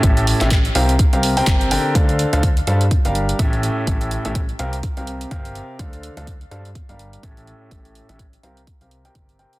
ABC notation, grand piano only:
X:1
M:4/4
L:1/16
Q:"Swing 16ths" 1/4=125
K:Cmix
V:1 name="Grand piano"
[A,,^C]3 [A,,CGAe] z2 [=C,=CGBf] z2 [C,CGBf]2 [C,CGBg]3 [D,CGBg]2 | [D,DAcf]3 [D,DAcf] z2 [G,DAcf] z2 [G,DGBf]3 [A,,^CGAe]4 | A,,3 [A,,^CGAe] z2 [=C,=CGBf] z2 [C,CGBf]3 [C,CGBf]4 | [DAcf]3 [D,DAcf] z2 [G,DAcf] z2 [G,DGBf]3 [A,,^CGAe]4 |
A,,3 [A,,^CGAe] z2 [=C,=CGBf] z2 [C,CGBf]2 [C,CGBg]3 [C,CGBg]2 |]